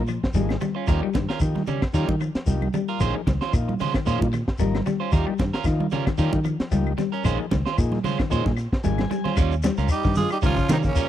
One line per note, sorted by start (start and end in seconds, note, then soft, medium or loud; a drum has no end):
0.00 0.17 A#2 medium
0.07 0.32 F3 medium
0.07 muted clean electric guitar stroke soft
0.07 closed hi-hat medium
0.07 claves medium
0.07 shekere soft
0.23 muted fingered electric bass stroke soft
0.23 kick medium
0.23 snare medium
0.34 0.56 G#1 medium
0.34 0.56 F3 medium
0.34 0.59 G3 medium
0.34 0.56 A#3 medium
0.34 0.56 D#4 medium
0.34 0.57 G#4 medium
0.34 snare soft
0.34 closed hi-hat medium
0.34 high conga medium
0.34 shekere medium
0.49 snare medium
0.49 high conga medium
0.49 claves medium
0.61 0.85 G3 medium
0.61 muted clean electric guitar stroke soft
0.61 snare soft
0.61 closed hi-hat medium
0.61 low conga medium
0.61 shekere soft
0.75 0.86 C#4 soft
0.75 0.86 F4 soft
0.75 muted clean electric guitar stroke soft
0.87 1.00 D#2 medium
0.87 1.10 F3 medium
0.87 1.02 G3 medium
0.87 1.09 A#3 medium
0.87 1.01 C#4 medium
0.87 1.10 D#4 medium
0.87 1.01 F4 medium
0.87 1.10 G4 medium
0.87 1.01 A#4 medium
0.87 kick medium
0.87 closed hi-hat medium
0.87 high conga soft
0.87 low conga medium
0.87 claves medium
0.87 shekere medium
1.02 1.14 G3 medium
1.02 muted clean electric guitar stroke soft
1.14 1.26 G2 medium
1.14 1.39 D#3 medium
1.14 muted clean electric guitar stroke soft
1.14 kick medium
1.14 snare medium
1.14 closed hi-hat medium
1.14 high conga medium
1.14 shekere soft
1.29 1.40 C#4 soft
1.29 1.40 F4 soft
1.29 1.40 A#4 medium
1.29 snare medium
1.29 closed hi-hat soft
1.40 1.62 D#3 medium
1.40 1.62 F3 medium
1.40 1.63 A#3 medium
1.40 1.63 D#4 medium
1.40 1.63 G4 medium
1.40 muted clean electric guitar stroke soft
1.40 kick medium
1.40 closed hi-hat medium
1.40 high conga soft
1.40 claves medium
1.40 shekere medium
1.55 muted clean electric guitar stroke soft
1.55 snare soft
1.55 high conga medium
1.67 1.81 C#3 medium
1.67 1.82 G3 medium
1.67 1.82 C#4 medium
1.67 muted clean electric guitar stroke medium
1.67 closed hi-hat soft
1.67 low conga medium
1.67 shekere soft
1.82 muted clean electric guitar stroke soft
1.82 kick medium
1.82 snare medium
1.82 closed hi-hat soft
1.82 claves medium
1.93 2.05 D#3 medium
1.93 2.15 F3 medium
1.93 2.09 G3 medium
1.93 2.15 A#3 medium
1.93 2.08 C#4 medium
1.93 2.15 D#4 medium
1.93 2.08 F4 medium
1.93 2.16 G4 loud
1.93 2.08 A#4 medium
1.93 closed hi-hat medium
1.93 shekere medium
2.08 2.29 D#3 medium
2.08 muted clean electric guitar stroke soft
2.08 kick medium
2.08 high conga medium
2.21 2.45 F3 medium
2.21 muted clean electric guitar stroke soft
2.21 closed hi-hat soft
2.21 claves medium
2.21 shekere soft
2.35 muted fingered electric bass stroke soft
2.35 snare medium
2.35 closed hi-hat soft
2.46 2.68 C2 medium
2.46 2.68 F3 medium
2.46 2.68 A#3 medium
2.46 2.69 D#4 medium
2.46 2.69 G4 medium
2.46 closed hi-hat medium
2.46 high conga medium
2.46 shekere medium
2.62 high conga medium
2.62 claves medium
2.74 2.98 G3 medium
2.74 muted clean electric guitar stroke soft
2.74 closed hi-hat medium
2.74 low conga medium
2.74 shekere soft
2.88 3.00 F4 medium
2.88 3.01 A#4 medium
2.88 closed hi-hat soft
3.00 3.12 A#1 medium
3.00 3.21 F3 medium
3.00 3.15 G#3 medium
3.00 3.21 A#3 medium
3.00 3.15 C#4 medium
3.00 3.22 D#4 medium
3.00 3.15 F4 medium
3.00 3.22 G#4 medium
3.00 3.14 C5 medium
3.00 kick loud
3.00 snare soft
3.00 closed hi-hat medium
3.00 high conga soft
3.00 low conga medium
3.00 claves medium
3.00 shekere medium
3.15 3.26 F3 medium
3.15 muted clean electric guitar stroke soft
3.27 3.38 C#2 medium
3.27 3.51 D#3 medium
3.27 muted clean electric guitar stroke soft
3.27 kick medium
3.27 snare medium
3.27 closed hi-hat medium
3.27 high conga medium
3.27 shekere soft
3.41 3.53 C#4 soft
3.41 3.54 F4 medium
3.41 3.53 C5 medium
3.41 snare medium
3.41 closed hi-hat soft
3.52 3.74 A#2 medium
3.52 3.74 F3 medium
3.52 3.74 A#3 medium
3.52 3.75 D#4 medium
3.52 3.75 F4 medium
3.52 muted clean electric guitar stroke soft
3.52 kick medium
3.52 closed hi-hat medium
3.52 high conga soft
3.52 claves medium
3.52 shekere medium
3.68 muted clean electric guitar stroke soft
3.68 high conga medium
3.80 3.93 C#3 medium
3.80 3.95 G#3 medium
3.80 3.94 C#4 medium
3.80 3.94 F4 medium
3.80 3.94 C5 medium
3.80 open hi-hat medium
3.80 low conga medium
3.80 shekere soft
3.94 4.18 D#3 medium
3.94 muted clean electric guitar stroke soft
3.94 kick medium
3.94 snare medium
3.94 closed hi-hat medium
3.94 claves medium
4.05 4.18 A#2 medium
4.05 4.27 F3 medium
4.05 4.21 G#3 medium
4.05 4.27 A#3 medium
4.05 4.20 C#4 medium
4.05 4.28 D#4 medium
4.05 4.28 F4 medium
4.05 4.20 F4 medium
4.05 4.20 C5 medium
4.05 snare soft
4.05 closed hi-hat medium
4.05 high conga soft
4.05 shekere medium
4.21 4.42 A#2 medium
4.21 muted clean electric guitar stroke soft
4.21 kick medium
4.21 high conga medium
4.33 muted clean electric guitar stroke soft
4.33 snare soft
4.33 closed hi-hat medium
4.33 low conga medium
4.33 claves medium
4.33 shekere soft
4.48 muted fingered electric bass stroke soft
4.48 kick medium
4.48 snare medium
4.59 4.81 G#1 medium
4.59 4.81 F3 medium
4.59 4.83 G3 medium
4.59 4.81 A#3 medium
4.59 4.81 D#4 medium
4.59 4.81 A#4 medium
4.59 snare soft
4.59 closed hi-hat medium
4.59 high conga medium
4.59 shekere medium
4.75 snare medium
4.75 high conga medium
4.75 claves medium
4.86 5.10 G3 medium
4.86 muted clean electric guitar stroke soft
4.86 snare soft
4.86 closed hi-hat soft
4.86 low conga medium
4.86 shekere soft
5.00 5.11 C#4 soft
5.00 5.12 F4 soft
5.00 5.12 C5 medium
5.12 5.24 D#2 medium
5.12 5.34 F3 medium
5.12 5.27 G3 medium
5.12 5.34 A#3 medium
5.12 5.34 D#4 medium
5.12 5.26 F4 medium
5.12 5.34 G4 medium
5.12 5.25 A#4 medium
5.12 muted clean electric guitar stroke medium
5.12 kick medium
5.12 snare soft
5.12 closed hi-hat medium
5.12 high conga soft
5.12 low conga medium
5.12 claves medium
5.12 shekere medium
5.27 5.38 G3 medium
5.27 muted clean electric guitar stroke soft
5.38 5.51 G2 medium
5.38 5.63 D#3 medium
5.38 muted clean electric guitar stroke soft
5.38 kick medium
5.38 snare medium
5.38 closed hi-hat medium
5.38 high conga medium
5.38 shekere soft
5.54 5.65 C#4 soft
5.54 5.65 F4 medium
5.54 5.65 A#4 medium
5.54 snare medium
5.54 closed hi-hat soft
5.64 5.87 D#3 medium
5.64 5.86 F3 medium
5.64 5.87 A#3 medium
5.64 5.87 D#4 medium
5.64 5.87 F4 medium
5.64 muted clean electric guitar stroke soft
5.64 kick medium
5.64 snare soft
5.64 closed hi-hat medium
5.64 high conga soft
5.64 claves medium
5.64 shekere medium
5.80 muted clean electric guitar stroke soft
5.80 high conga medium
5.91 6.05 C#3 medium
5.91 6.06 G3 medium
5.91 6.06 C#4 medium
5.91 6.05 F4 medium
5.91 6.05 A#4 medium
5.91 snare soft
5.91 closed hi-hat soft
5.91 low conga medium
5.91 shekere soft
6.06 6.30 D#3 medium
6.06 muted clean electric guitar stroke soft
6.06 kick medium
6.06 snare medium
6.06 closed hi-hat medium
6.06 claves medium
6.18 6.30 D#3 medium
6.18 6.40 F3 medium
6.18 6.33 G3 medium
6.18 6.40 A#3 medium
6.18 6.32 C#4 medium
6.18 6.40 D#4 medium
6.18 6.32 F4 medium
6.18 6.40 G4 medium
6.18 6.31 A#4 medium
6.18 snare soft
6.18 closed hi-hat medium
6.18 high conga soft
6.18 shekere medium
6.33 6.54 D#3 medium
6.33 muted clean electric guitar stroke soft
6.33 kick medium
6.33 high conga medium
6.44 6.69 F3 medium
6.44 muted clean electric guitar stroke soft
6.44 closed hi-hat soft
6.44 low conga medium
6.44 claves medium
6.44 shekere soft
6.60 muted fingered electric bass stroke soft
6.60 snare medium
6.60 closed hi-hat soft
6.71 6.93 C#2 medium
6.71 6.93 F3 medium
6.71 6.95 G3 medium
6.71 6.93 A#3 medium
6.71 6.93 D#4 medium
6.71 6.93 G4 medium
6.71 snare soft
6.71 closed hi-hat medium
6.71 high conga medium
6.71 shekere medium
6.87 claves medium
6.98 7.22 G3 medium
6.98 muted clean electric guitar stroke soft
6.98 snare soft
6.98 closed hi-hat soft
6.98 low conga medium
6.98 shekere soft
7.12 7.24 C#4 soft
7.12 7.25 A#4 medium
7.12 muted clean electric guitar stroke soft
7.12 closed hi-hat soft
7.24 7.36 A#1 medium
7.24 7.46 F3 medium
7.24 7.39 G#3 medium
7.24 7.46 A#3 medium
7.24 7.39 C#4 medium
7.24 7.46 D#4 medium
7.24 7.39 F4 medium
7.24 7.46 G#4 medium
7.24 7.38 C5 medium
7.24 kick medium
7.24 closed hi-hat medium
7.24 high conga soft
7.24 low conga medium
7.24 claves medium
7.24 shekere medium
7.39 7.50 F3 medium
7.39 muted clean electric guitar stroke soft
7.51 7.63 C#2 medium
7.51 7.75 D#3 medium
7.51 muted clean electric guitar stroke soft
7.51 kick medium
7.51 snare medium
7.51 closed hi-hat soft
7.51 high conga medium
7.51 shekere soft
7.66 7.77 C#4 soft
7.66 7.77 F4 soft
7.66 7.77 C5 medium
7.66 snare medium
7.66 closed hi-hat medium
7.77 7.99 A#2 medium
7.77 7.99 F3 medium
7.77 7.99 A#3 medium
7.77 7.99 D#4 medium
7.77 7.99 G#4 medium
7.77 muted clean electric guitar stroke soft
7.77 kick medium
7.77 closed hi-hat medium
7.77 high conga soft
7.77 claves medium
7.77 shekere medium
7.92 muted clean electric guitar stroke soft
7.92 snare soft
7.92 high conga medium
8.04 8.17 C#3 medium
8.04 8.19 G#3 medium
8.04 8.19 C#4 medium
8.04 8.19 F4 medium
8.04 8.18 C5 medium
8.04 open hi-hat medium
8.04 high conga medium
8.04 low conga medium
8.04 shekere soft
8.19 8.43 D#3 medium
8.19 muted clean electric guitar stroke soft
8.19 kick medium
8.19 snare medium
8.19 closed hi-hat soft
8.19 claves medium
8.29 8.43 A#2 medium
8.29 8.51 F3 medium
8.29 8.45 G#3 medium
8.29 8.52 A#3 medium
8.29 8.45 C#4 medium
8.29 8.52 D#4 medium
8.29 8.52 G#4 medium
8.29 8.44 C5 medium
8.29 muted clean electric guitar stroke medium
8.29 snare soft
8.29 closed hi-hat medium
8.29 high conga soft
8.29 shekere medium
8.45 8.66 A#2 medium
8.45 muted clean electric guitar stroke soft
8.45 kick medium
8.45 snare soft
8.45 high conga medium
8.57 muted clean electric guitar stroke soft
8.57 snare soft
8.57 closed hi-hat soft
8.57 claves medium
8.57 shekere soft
8.72 muted fingered electric bass stroke soft
8.72 kick medium
8.72 snare medium
8.83 9.05 G#1 medium
8.83 9.05 F3 medium
8.83 9.08 G3 medium
8.83 9.05 A#3 medium
8.83 9.05 D#4 medium
8.83 9.05 G#4 medium
8.83 9.33 G#5 medium
8.83 closed hi-hat medium
8.83 high conga medium
8.83 shekere medium
8.98 snare medium
8.98 high conga medium
8.98 claves medium
9.10 9.34 G3 medium
9.10 muted clean electric guitar stroke soft
9.10 snare soft
9.10 closed hi-hat medium
9.10 high conga medium
9.10 shekere soft
9.24 9.36 C#4 soft
9.24 9.36 F4 soft
9.24 9.37 C5 soft
9.24 snare soft
9.24 low conga medium
9.37 9.69 D#2 medium
9.37 9.53 G3 medium
9.37 9.54 C#4 medium
9.37 9.54 F4 medium
9.37 muted clean electric guitar stroke loud
9.37 kick loud
9.37 closed hi-hat medium
9.37 claves medium
9.37 shekere medium
9.51 shekere soft
9.63 9.87 G3 medium
9.63 muted clean electric guitar stroke soft
9.63 snare medium
9.63 closed hi-hat medium
9.63 high conga medium
9.63 shekere medium
9.77 9.87 C#2 medium
9.77 9.89 C#4 soft
9.77 9.89 F4 medium
9.77 9.89 A#4 medium
9.77 snare soft
9.77 closed hi-hat medium
9.77 shekere soft
9.88 10.15 G3 medium
9.88 10.15 D#4 medium
9.88 10.15 G4 medium
9.88 muted clean electric guitar stroke soft
9.88 closed hi-hat medium
9.88 claves medium
9.88 shekere loud
10.03 10.25 G2 medium
10.03 10.28 D#3 medium
10.03 muted clean electric guitar stroke soft
10.03 kick medium
10.03 snare soft
10.03 shekere soft
10.15 10.30 G#3 medium
10.15 10.31 F4 medium
10.15 10.30 G#4 loud
10.15 snare soft
10.15 open hi-hat medium
10.15 high conga medium
10.15 low conga medium
10.15 shekere medium
10.29 10.37 G3 medium
10.29 10.38 D#4 medium
10.29 10.37 G4 loud
10.29 muted clean electric guitar stroke soft
10.29 claves medium
10.29 shekere soft
10.42 10.54 C#2 loud
10.42 10.56 D#3 medium
10.42 10.68 F3 medium
10.42 10.57 G3 medium
10.42 10.56 C#4 medium
10.42 10.68 C#4 medium
10.42 10.56 F4 medium
10.42 10.69 F4 medium
10.42 10.56 A#4 medium
10.42 kick medium
10.42 closed hi-hat medium
10.42 shekere medium
10.56 10.68 C#3 medium
10.56 muted clean electric guitar stroke soft
10.56 kick medium
10.56 shekere soft
10.69 10.93 C3 medium
10.69 10.90 D#3 medium
10.69 10.76 D#3 medium
10.69 10.83 G3 medium
10.69 10.77 C4 medium
10.69 10.84 C#4 medium
10.69 10.78 D#4 medium
10.69 10.83 F4 medium
10.69 10.83 A#4 medium
10.69 snare medium
10.69 closed hi-hat medium
10.69 high conga loud
10.69 claves medium
10.69 shekere medium
10.83 11.09 C#3 medium
10.83 11.09 A#3 medium
10.83 muted clean electric guitar stroke soft
10.83 kick medium
10.83 snare soft
10.83 closed hi-hat medium
10.83 shekere soft
10.87 11.09 C#4 medium
10.96 11.09 G3 medium
10.96 11.09 C#4 medium
10.96 11.09 F4 medium
10.96 11.09 A#4 medium
10.96 closed hi-hat medium
10.96 shekere loud